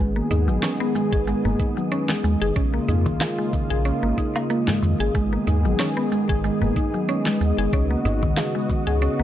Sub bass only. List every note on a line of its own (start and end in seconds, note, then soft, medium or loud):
0.00 0.22 G#1 medium
0.30 0.49 D#2 medium
0.48 0.58 G#1 medium
1.13 1.34 G#1 medium
1.45 1.55 F#1 medium
2.24 2.36 D#2 medium
2.41 2.52 F#1 medium
2.56 2.79 A#1 medium
2.89 3.08 F2 medium
3.06 3.17 A#1 medium
3.71 3.92 A#1 loud
4.03 4.13 G#1 medium
4.82 4.94 F2 medium
5.00 5.10 G#1 medium
5.15 5.38 G#1 medium
5.47 5.66 D#2 medium
5.65 5.75 G#1 medium
6.29 6.50 G#1 medium
6.61 6.71 F#1 medium
7.41 7.53 D#2 medium
7.58 7.68 F#1 loud
7.73 7.96 C#2 medium
8.05 8.24 G#1 medium
8.23 8.33 C#2 medium
8.87 9.08 C#2 loud
9.19 9.23 B1 medium